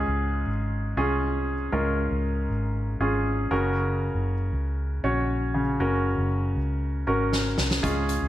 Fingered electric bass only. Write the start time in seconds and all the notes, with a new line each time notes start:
0.08 C#2
0.46 G#1
0.97 C2
1.73 C#2
2.11 C#2
2.49 G#1
3.00 G#1
3.51 F#1
4.15 F#1
4.53 C#2
5.04 A#1
5.80 F#1
6.18 F#1
6.56 C#2
7.07 G#1
7.59 C2
7.84 C#2
8.22 C#2